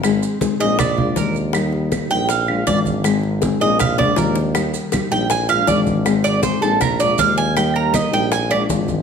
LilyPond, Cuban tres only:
\new Staff \with { instrumentName = "Cuban tres" } { \time 4/4 \key bes \mixolydian \tempo 4 = 160 r4. ees''8 d''4 bes'8 r8 | r4. g''8 f''4 d''8 r8 | r4. ees''8 f''8 d''8 bes'8 r8 | r4. g''8 aes''8 f''8 d''8 r8 |
r8 d''8 c''8 a'8 bes'8 d''8 f''8 aes''8 | g''8 bes'8 ees''8 g''8 aes''8 d''8 r4 | }